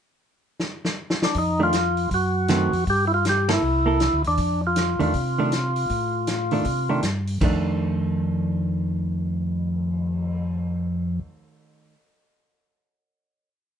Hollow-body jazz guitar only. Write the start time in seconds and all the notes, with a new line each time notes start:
1.59 D#3 A3 D4
2.49 D#3 A3 C4
3.49 A#3 E4 A4
3.86 A#3 E4 A4
4.99 D#3 A3 D4
5.38 D#3 A3 D4
6.52 D#3 A3 D4
6.89 D#3 A3 D4
7.41 D#3 A3 D4